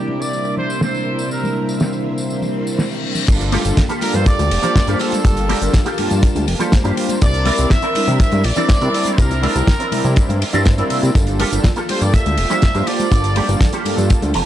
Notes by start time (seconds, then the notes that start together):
Already playing: C3 G3 A#3 C4 D4 E4 G4 A#4 D5 E5
0.08 high conga
0.21 D5, tambourine
0.33 tambourine
0.45 tambourine, high bongo
0.57 C5, low conga
0.70 tambourine
0.81 C5, snare, tambourine, high conga
0.94 tambourine
1.19 tambourine
1.31 A#4 C5, tambourine
1.44 tambourine, high conga, low conga
1.68 tambourine, high bongo
1.80 snare, tambourine
1.93 tambourine
2.18 tambourine
2.30 tambourine, reverse cymbal
2.42 tambourine, low conga
2.67 tambourine
2.79 snare, tambourine, high conga
2.92 tambourine
3.15 tambourine, low conga
3.27 G1 G3 A#3 D4 F4 G4 A4 F5 A5, kick, closed hi-hat, crash, tambourine
3.40 closed hi-hat, tambourine, high bongo
3.52 A#3 F4 G4 A4, open hi-hat, ride, high conga
3.64 G1 G3 A#3 D4 F4 A4, closed hi-hat, tambourine
3.77 kick, snare, closed hi-hat, tambourine, high bongo, low conga
3.89 A#3 F4 G4 A4, closed hi-hat, tambourine
4.01 G3 A#3 D4 F4 A4 A#4, open hi-hat, ride, high bongo, high conga
4.14 G2 C5, closed hi-hat, tambourine, low conga
4.26 D2 D5, kick, closed hi-hat, tambourine
4.38 D2, muted clean electric guitar stroke, closed hi-hat, tambourine, high bongo, high conga
4.51 F1, open hi-hat, ride
4.63 G3 A#3 D4 F4 G4 A4 C5, closed hi-hat, tambourine, high bongo, low conga
4.75 kick, snare, closed hi-hat, tambourine, high conga
4.87 G2 G3 A#3 D4 F4 G4 A4 C5, closed hi-hat, tambourine
4.99 G3 A#3 D4 F4 A4 C5, open hi-hat, ride, high bongo
5.12 closed hi-hat, tambourine, high conga
5.24 G1 G3 A#3 D4 F4 A4, kick, closed hi-hat, tambourine, high bongo
5.37 closed hi-hat, tambourine
5.49 A#3 F4 G4 A#4, open hi-hat, ride, high conga
5.61 G1 G3 A#3 D4 F4 A4, closed hi-hat, tambourine, high bongo
5.73 kick, snare, closed hi-hat, tambourine, low conga
5.85 A#3 F4 G4 A4, closed hi-hat, tambourine, high bongo
5.98 G2 G3 A#3 D4 F4 A5, open hi-hat, ride, high conga
6.10 G2, closed hi-hat, tambourine, low conga
6.22 kick, closed hi-hat, tambourine, high bongo
6.35 D2, muted clean electric guitar stroke, closed hi-hat, tambourine, high conga
6.47 F1, open hi-hat, ride, high bongo
6.59 G3 A#3 D4 F4 G4 A4 C5, closed hi-hat, tambourine, low conga
6.72 kick, snare, closed hi-hat, tambourine, high conga
6.84 G2 G3 A#3 D4 F4 G4 C5, closed hi-hat, tambourine, high bongo
6.96 G3 A#3 D4 F4 C5, open hi-hat, ride
7.09 closed hi-hat, tambourine, high bongo, high conga
7.21 C2 G3 C4 D4 E4 A#4 D5 E5 C6, kick, closed hi-hat, tambourine
7.34 closed hi-hat, tambourine
7.45 C4 D4 E4 A#4, open hi-hat, ride, high bongo, high conga
7.58 C2 G3 C4 D4 E4 A#4, closed hi-hat, tambourine
7.70 E5, kick, snare, closed hi-hat, tambourine, high bongo, low conga
7.82 C4 D4 E4 A#4, closed hi-hat, tambourine
7.95 G3 C4 D4 E4 A#4, open hi-hat, ride, high conga
8.08 C3, closed hi-hat, tambourine, high bongo, low conga
8.20 G2 E5, kick, closed hi-hat, tambourine
8.32 G2, muted clean electric guitar stroke, closed hi-hat, tambourine, high bongo, high conga
8.44 A#1 D5, open hi-hat, ride
8.56 G3 C4 D4 E4 A#4 D5, closed hi-hat, tambourine, low conga
8.69 kick, snare, closed hi-hat, tambourine, high bongo, high conga
8.81 C3 G3 C4 D4 E4 A#4 D5, closed hi-hat, tambourine
8.93 G3 C4 D4 E4 D5, open hi-hat, ride, high bongo
9.05 closed hi-hat, tambourine, high conga
9.18 C2 G3 C4 D4 E4 A#4, kick, closed hi-hat, tambourine
9.31 closed hi-hat, tambourine, high bongo
9.43 C4 D4 E4 A#4, open hi-hat, ride, high conga
9.55 C2 G3 C4 D4 E4 A#4, closed hi-hat, tambourine, high bongo
9.67 kick, snare, closed hi-hat, tambourine, low conga
9.79 C4 D4 E4 A#4, closed hi-hat, tambourine
9.91 C3 G3 C4 D4 E4 A#4, open hi-hat, ride, high bongo, high conga
10.04 C3, closed hi-hat, tambourine, low conga
10.16 kick, closed hi-hat, tambourine, high bongo
10.29 G2, muted clean electric guitar stroke, closed hi-hat, tambourine, high conga
10.42 open hi-hat, ride
10.53 G2 G3 C4 D4 E4 A#4 C5, closed hi-hat, tambourine, high bongo, low conga
10.65 kick, snare, closed hi-hat, tambourine, high conga
10.78 G3 A#3 C4 D4 E4 A#4, closed hi-hat, tambourine, high bongo
10.90 C3, open hi-hat, ride
11.03 C3, closed hi-hat, tambourine, high conga
11.15 G1 G3 A#3 D4 F4 A4 G5, kick, closed hi-hat, tambourine
11.27 closed hi-hat, tambourine, high bongo
11.39 A#3 F4 G4 A4, open hi-hat, ride, high conga
11.51 G1 G3 A#3 D4 F4 A4, closed hi-hat, tambourine
11.64 kick, snare, closed hi-hat, tambourine, high bongo, low conga
11.76 A#3 F4 G4 A4, closed hi-hat, tambourine
11.88 G3 A#3 D4 F4 A4 C5, open hi-hat, ride, high bongo, high conga
12.01 G2 D5, closed hi-hat, tambourine, low conga
12.13 D2 E5, kick, closed hi-hat, tambourine
12.26 D2, muted clean electric guitar stroke, closed hi-hat, tambourine, high bongo, high conga
12.37 F1, open hi-hat, ride
12.50 G3 A#3 D4 F4 G4 A4 C5, closed hi-hat, tambourine, high bongo, low conga
12.62 kick, snare, closed hi-hat, tambourine, high conga
12.74 G2 G3 A#3 D4 F4 G4 C5, closed hi-hat, tambourine
12.86 G3 A#3 D4 F4 C5 D5, open hi-hat, ride, high bongo
13.00 closed hi-hat, tambourine, high conga
13.11 G1 G3 A#3 D4 F4 A4, kick, closed hi-hat, tambourine, high bongo
13.24 closed hi-hat, tambourine
13.36 A#3 F4 G4 A4, open hi-hat, ride, high conga
13.48 G1 G3 A#3 D4 F4 A4, closed hi-hat, tambourine, high bongo
13.61 kick, snare, closed hi-hat, tambourine, low conga
13.73 A#3 F4 G4 A4, closed hi-hat, tambourine, high bongo
13.85 G2 G3 A#3 D4 F4 A4, open hi-hat, ride, high conga
13.97 G2, closed hi-hat, tambourine, low conga
14.10 kick, closed hi-hat, tambourine, high bongo
14.22 D2, muted clean electric guitar stroke, closed hi-hat, tambourine, high conga
14.34 F1 A5, open hi-hat, ride, high bongo